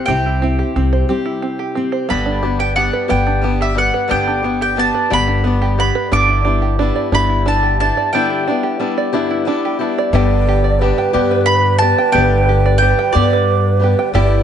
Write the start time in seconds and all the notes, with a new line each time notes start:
Already playing: G3 G4 C5
0.06 C2 C3 C4 E4 G4 G5
0.26 E4
0.42 C4 E4
0.59 G4
0.76 C2 C4
0.93 C5
1.09 G3 C4 G4
1.26 E4
1.42 C4
1.59 G4
1.75 C4
1.92 C5
2.09 G1 G2 D3 G3 B3 D4 G4 B5
2.26 D4
2.42 G3 B3 D4 G4
2.59 G4 G5
2.75 G3 B3 D4 G4 F#5
2.93 B4
3.08 G1 G2 D3 G3 B3 D4 G4 G5
3.27 D4
3.41 G3 B3 D4 G4
3.61 G4 E5
3.75 G3 B3 D4 G4 F#5
3.94 B4
4.08 G1 G2 D3 G3 B3 D4 G4 G5
4.27 D4
4.42 G3 B3 D4 G4
4.61 G4 G5
4.76 G3 B3 D4 G4 A5
4.94 B4
5.10 G1 G2 D3 G3 B3 D4 G4 B5
5.28 D4
5.44 G3 B3 D4 G4
5.62 G4
5.78 G3 B3 D4 G4 B5
5.95 B4
6.12 G1 G2 D3 G3 B3 D4 E4 G4 D6
6.29 E4
6.45 G3 B3 D4 E4 G4
6.62 G4
6.79 G3 B3 D4 E4 G4
6.96 D5
7.12 G1 G2 D3 G3 B3 D4 E4 G4 B5
7.29 E4
7.46 G3 B3 D4 E4 G4 A5
7.63 G4
7.80 G3 B3 D4 E4 G4 A5
7.97 D5
8.13 G2 D3 G3 B3 D4 E4 G4 G5
8.30 E4
8.48 G3 B3 D4 E4 G4
8.63 G4
8.79 G3 B3 D4 E4 G4
8.98 D5
9.13 G2 D3 G3 B3 D4 E4 G4
9.31 E4
9.45 G3 B3 D4 E4 G4
9.65 G4
9.79 G3 B3 D4 E4 G4
9.98 D5
10.12 G1 G2 D3 G3 B3 D4 G4 B4 D5 E5
10.17 D5
10.49 G4
10.64 D5
10.80 G3 B3 D4 G4 B4
10.84 G4
10.98 G5
11.13 G2 D3 G3 B3 D4 G4
11.31 B4
11.46 B5
11.78 B3 D4 G4 A5
11.83 G3
11.98 G5
12.12 G1 G2 D3 G3 B3 D4 G4 B4 E5 G5
12.49 G4
12.66 D5
12.78 G3 B3 D4 G5
12.83 G4
12.99 G5
13.12 G2 D3 G3 B3 D4 G4 D5
13.17 G4
13.33 B4
13.79 G3 B3 D4 G4
13.83 G4
13.99 G5
14.13 G1 G2 D3 G3 B3 D4 E4 G4 B4 D5